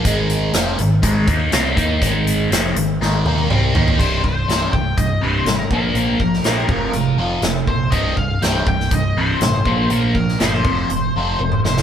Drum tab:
CC |----------------|----------------|x---------------|----------------|
HH |x-x-x-x-x-x-x-x-|x-x-x-x---------|----x---x---x---|x---x---x---x---|
SD |----o-------o---|----o---o-------|----o-------o---|---oo-------o---|
T1 |----------------|----------oo----|----------------|----------------|
T2 |----------------|------------o---|----------------|----------------|
FT |----------------|--------------oo|----------------|----------------|
BD |o-------o-o---o-|o---------------|o-o---o-o-----o-|--o---o-------o-|

CC |----------------|----------------|
HH |x---x---x---x---|x---x---x-------|
SD |----o--o----o---|---oo---------oo|
T1 |----------------|------------o---|
T2 |----------------|-------------o--|
FT |----------------|----------------|
BD |o-o---o-o-----o-|--o---o---------|